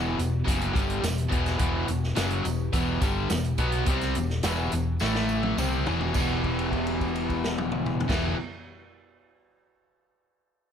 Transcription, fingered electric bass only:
Already playing: E1
0.19 E1
0.47 F#1
0.75 G1
1.03 E1
1.32 E1
1.60 E1
1.88 E1
2.17 F#1
2.45 E1
2.74 E1
3.02 G1
3.31 E1
3.58 B1
3.87 C2
4.15 E1
4.44 E1
4.72 E1
5.01 A1
5.58 C2
5.86 E1
6.15 E1
8.09 E1

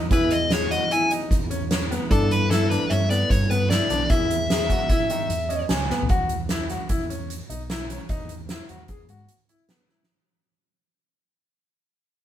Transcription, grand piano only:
0.12 E4
0.51 G#4
0.71 F#4
0.91 E4
1.11 D#4
1.50 C#4
1.71 C#4
1.91 B3
2.11 D4
2.50 E4
2.71 D4
2.91 C#4
3.11 B3
3.51 B3
3.70 E4
3.90 D4
4.10 E4
4.50 G#4
4.71 F#4
4.90 E4
5.10 D#3
5.50 C#4
5.70 C#4
5.90 B3
6.10 F#4
6.50 E4
6.70 F#4
6.90 E4
7.10 C#4
7.50 D#4
7.70 E4
7.90 C#4
8.10 D#4
8.50 E4
8.70 F#4
8.90 G#4
9.10 F#4
9.49 E4
9.69 B3
9.89 E4

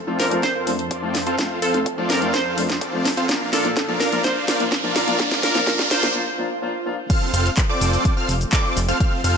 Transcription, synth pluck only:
Already playing: A4
0.20 A#4
0.43 C5
1.62 A4
2.10 A#4
2.34 C5
3.53 A4
4.00 A#4
4.24 C5
5.43 A#4
5.91 C5

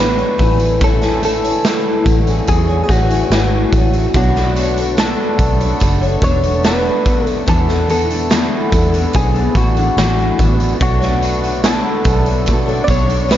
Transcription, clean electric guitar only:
0.00 B4
0.84 A4
1.25 A4
2.49 G#4
2.84 G#4
2.91 F#4
4.16 F#4
5.00 A4
6.24 C#5
6.66 B4
7.27 A4
7.49 A4
7.91 A4
9.16 G#4
9.57 F#4
10.82 F#4
11.66 A4
12.84 D5
12.90 C#5
13.32 B4

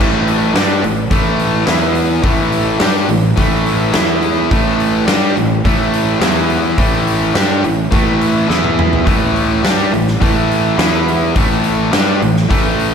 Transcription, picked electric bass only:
0.00 A1
0.54 G2
0.83 A1
1.11 A1
1.68 E2
2.24 A1
2.81 G2
3.09 A1
3.38 A1
3.95 E2
4.51 A1
5.08 G2
5.37 A1
5.65 A1
6.21 E2
6.78 A1
7.35 G2
7.64 A1
7.92 A1
8.49 E2
9.06 A1
9.64 G2
9.94 A1
10.22 A1
10.78 E2
11.36 A1
11.93 G2
12.22 A1
12.50 A1

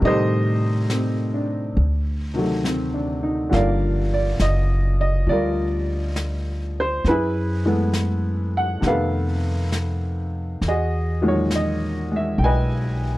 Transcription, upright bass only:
0.02 A2
1.77 D2
3.52 G1
4.40 F#1
5.27 D2
7.04 F#2
8.82 F2
10.61 E2
12.38 B1

